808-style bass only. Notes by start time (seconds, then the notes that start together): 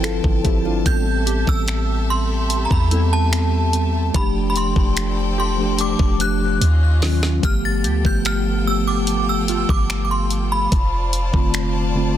Already playing: G1
0.24 G1
0.86 A1
1.48 A1
2.71 E2
4.14 F1
4.76 F1
6.00 F1
6.61 D#2
7.43 G1
7.85 D2
8.05 G1
9.69 G1
10.72 F1
11.34 F1